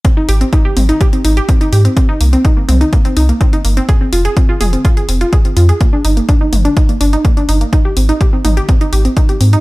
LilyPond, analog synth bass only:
\new Staff \with { instrumentName = "Analog synth bass" } { \clef bass \time 4/4 \key aes \lydian \tempo 4 = 125 r8 aes,,8 r8 aes,,8 r8 aes,,8 r8 aes,8 | r8 c,8 r8 c,8 r8 c,8 r8 g,,8 | r8 f,,8 r8 f,,8 r8 f,,8 r8 f,8 | r8 g,,8 r8 g,,8 r8 g,,8 r8 g,,8 |
r8 aes,,8 r8 aes,,8 r8 aes,,8 r8 aes,8 | }